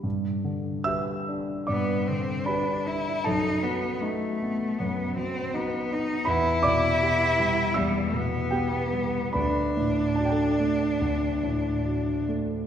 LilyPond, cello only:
\new Staff \with { instrumentName = "Cello" } { \time 4/4 \key g \major \tempo 4 = 76 r2 b8 c'8 d'8 e'8 | dis'8 b8 a4 b8 c'8 b8 dis'8 | e'2 g8 b4. | d'2.~ d'8 r8 | }